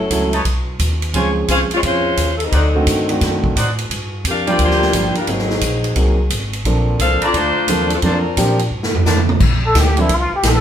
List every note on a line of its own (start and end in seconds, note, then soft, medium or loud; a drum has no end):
0.00 0.42 F#3 medium
0.00 0.42 C#4 medium
0.00 0.42 E4 medium
0.00 0.42 A4 medium
0.10 0.44 C#2 medium
0.10 0.31 F#3 medium
0.10 0.31 A3 soft
0.10 0.31 C#4 medium
0.10 0.31 E4 soft
0.10 0.31 A4 medium
0.10 kick soft
0.10 hi-hat pedal medium
0.10 ride medium
0.32 0.41 D#4 medium
0.32 0.41 B4 medium
0.32 0.41 C#5 medium
0.32 0.41 A5 medium
0.32 ride soft
0.45 0.78 B1 medium
0.45 kick soft
0.45 ride medium
0.79 1.13 D#2 medium
0.79 kick soft
0.79 hi-hat pedal medium
0.79 ride medium
1.02 ride soft
1.13 1.47 C#2 medium
1.13 1.67 F3 soft
1.13 1.67 G#3 soft
1.13 1.67 C4 soft
1.13 1.67 C#4 soft
1.13 1.29 F4 medium
1.13 1.67 G#4 medium
1.13 1.29 C5 medium
1.13 1.29 C#5 medium
1.13 1.29 G#5 medium
1.13 kick soft
1.13 ride medium
1.48 1.68 C2 medium
1.48 1.60 C#4 medium
1.48 1.64 F4 medium
1.48 1.60 G#4 medium
1.48 1.64 C5 medium
1.48 1.60 C5 medium
1.48 1.64 C#5 medium
1.48 1.60 F5 medium
1.48 1.64 G#5 medium
1.48 kick soft
1.48 hi-hat pedal medium
1.48 ride medium
1.69 muted upright bass stroke soft
1.69 ride soft
1.73 1.78 G#3 medium
1.73 1.78 C4 medium
1.73 1.78 F4 medium
1.73 1.79 C#5 medium
1.83 2.16 F2 medium
1.83 2.32 G#3 medium
1.83 2.32 C#4 medium
1.83 2.32 F4 medium
1.83 2.32 C5 medium
1.83 kick soft
1.83 ride medium
2.17 2.51 D#2 medium
2.17 kick soft
2.17 hi-hat pedal medium
2.17 ride medium
2.36 2.41 A4 medium
2.36 ride soft
2.43 2.54 G3 medium
2.43 2.54 C4 medium
2.43 2.54 D#4 medium
2.43 2.54 A#4 medium
2.52 2.85 D2 medium
2.52 3.18 F#3 medium
2.52 3.18 C4 medium
2.52 2.67 D#4 medium
2.52 3.18 D#4 medium
2.52 3.18 A4 medium
2.52 2.67 C5 medium
2.52 2.67 D5 medium
2.52 2.67 F#5 medium
2.52 kick soft
2.52 ride medium
2.75 3.07 D3 medium
2.75 3.07 D#3 medium
2.75 3.07 A3 medium
2.75 3.07 C4 medium
2.75 3.07 F#4 medium
2.86 3.20 G2 medium
2.86 kick soft
2.86 hi-hat pedal medium
2.86 ride medium
3.09 3.54 D#3 medium
3.09 3.54 A3 medium
3.09 3.54 C4 medium
3.09 3.54 D4 soft
3.09 3.54 F#4 medium
3.09 ride soft
3.21 3.54 F#2 medium
3.21 kick soft
3.21 snare soft
3.21 ride medium
3.44 kick soft
3.55 3.89 A2 medium
3.55 3.70 D#4 medium
3.55 3.70 C5 medium
3.55 3.70 D5 medium
3.55 3.70 F#5 medium
3.55 kick soft
3.55 hi-hat pedal medium
3.55 ride medium
3.78 ride soft
3.90 4.23 G2 medium
3.90 kick soft
3.90 ride medium
4.24 4.58 F2 medium
4.24 kick soft
4.24 hi-hat pedal soft
4.24 ride medium
4.28 4.47 D4 medium
4.28 4.47 G4 medium
4.28 4.47 A#4 medium
4.28 4.47 F5 medium
4.46 4.91 F3 medium
4.46 4.91 G3 medium
4.46 4.91 A#3 medium
4.46 4.60 A#3 medium
4.46 4.91 D4 medium
4.46 4.90 F4 medium
4.46 4.60 F4 medium
4.46 4.91 G4 medium
4.46 4.60 G4 medium
4.46 4.90 A#4 medium
4.46 4.90 D5 medium
4.46 4.90 G5 medium
4.46 ride soft
4.50 4.60 D5 medium
4.59 4.92 D2 medium
4.59 5.13 A#3 medium
4.59 5.13 F4 medium
4.59 5.13 G4 medium
4.59 5.13 C5 medium
4.59 kick soft
4.59 ride medium
4.71 snare soft
4.82 snare soft
4.92 5.13 G1 medium
4.92 5.14 F3 medium
4.92 5.14 G3 soft
4.92 5.14 A#3 soft
4.92 5.14 D4 soft
4.92 5.14 G4 medium
4.92 kick soft
4.92 hi-hat pedal medium
4.92 ride medium
5.15 5.28 G3 medium
5.15 5.28 D4 medium
5.15 5.28 F4 medium
5.15 5.28 A#4 medium
5.15 ride soft
5.27 5.60 G#1 medium
5.27 5.48 F#3 soft
5.27 5.97 F#3 medium
5.27 5.48 A#3 soft
5.27 5.48 C4 soft
5.27 5.97 C4 medium
5.27 5.48 D#4 soft
5.27 5.97 D#4 medium
5.27 5.48 G#4 medium
5.27 5.97 G#4 medium
5.27 kick soft
5.27 ride medium
5.39 snare soft
5.50 snare soft
5.61 5.95 A#1 medium
5.61 kick soft
5.61 hi-hat pedal medium
5.61 ride medium
5.84 ride soft
5.95 6.29 C2 medium
5.95 6.16 F#3 medium
5.95 6.16 A#3 medium
5.95 6.16 C4 soft
5.95 6.16 D#4 soft
5.95 6.16 G#4 medium
5.95 kick soft
5.95 ride medium
6.30 6.64 G#1 medium
6.30 kick soft
6.30 hi-hat pedal medium
6.30 ride medium
6.53 ride soft
6.64 6.98 A#1 medium
6.64 7.18 F3 soft
6.64 7.18 A#3 soft
6.64 7.18 C4 soft
6.64 7.18 D4 soft
6.64 7.18 A4 medium
6.64 kick soft
6.64 ride medium
6.99 7.20 C2 medium
6.99 7.21 D4 medium
6.99 7.21 A4 medium
6.99 7.21 C5 medium
6.99 7.21 F5 loud
6.99 kick soft
6.99 hi-hat pedal medium
6.99 ride medium
7.21 7.34 C4 medium
7.21 7.65 D4 medium
7.21 7.34 F4 medium
7.21 7.34 A4 medium
7.21 7.65 C5 medium
7.21 7.34 D5 medium
7.21 7.65 A5 medium
7.21 7.65 A#5 medium
7.21 muted upright bass stroke soft
7.21 ride soft
7.34 7.54 D2 medium
7.34 7.91 A3 medium
7.34 7.91 D4 medium
7.34 7.92 F4 medium
7.34 7.91 C5 loud
7.34 kick soft
7.34 ride medium
7.56 muted upright bass stroke soft
7.67 8.01 D#2 medium
7.67 7.89 F3 medium
7.67 7.89 A#3 medium
7.67 7.89 C4 medium
7.67 7.89 D4 medium
7.67 7.89 A4 medium
7.67 kick soft
7.67 hi-hat pedal soft
7.67 ride medium
7.90 7.98 F3 medium
7.90 7.98 C4 medium
7.90 7.98 D4 medium
7.90 7.98 A4 medium
7.90 ride soft
8.02 8.36 F2 medium
8.02 8.23 F3 medium
8.02 8.69 F3 medium
8.02 8.23 A#3 soft
8.02 8.23 C4 medium
8.02 8.69 C4 medium
8.02 8.18 D4 medium
8.02 8.23 D4 medium
8.02 8.69 D4 medium
8.02 8.23 A4 medium
8.02 8.18 A#4 medium
8.02 8.69 A#4 medium
8.02 8.18 C5 medium
8.02 8.18 A5 medium
8.02 kick soft
8.02 ride medium
8.37 8.70 A#2 medium
8.37 8.57 F3 medium
8.37 8.58 A#3 medium
8.37 8.58 C4 medium
8.37 8.58 D4 medium
8.37 8.58 G4 medium
8.37 kick soft
8.37 hi-hat pedal medium
8.37 ride medium
8.59 ride soft
8.71 9.04 G2 medium
8.83 snare soft
8.95 floor tom medium
9.05 9.39 F2 medium
9.05 9.21 D4 medium
9.05 9.21 A#4 medium
9.05 9.21 C5 medium
9.05 9.21 A5 medium
9.05 snare medium
9.05 hi-hat pedal medium
9.17 mid tom medium
9.29 mid tom medium
9.40 9.74 A#1 medium
9.40 kick medium
9.40 crash medium
9.66 9.82 A4 medium
9.74 10.08 D2 medium
9.74 kick soft
9.74 snare medium
9.74 hi-hat pedal medium
9.74 ride medium
9.80 10.02 G4 medium
9.97 10.09 F3 medium
9.97 10.09 A#3 medium
9.97 10.09 C4 medium
9.97 10.09 D4 medium
9.97 10.16 E4 medium
9.97 10.09 A4 medium
9.97 ride soft
10.09 10.30 C2 medium
10.09 kick soft
10.09 ride medium
10.14 10.34 F4 medium
10.31 muted upright bass stroke soft
10.36 10.49 G4 medium
10.43 10.61 A#1 medium
10.43 kick soft
10.43 snare medium
10.43 hi-hat pedal medium
10.43 ride medium
10.48 10.61 A4 medium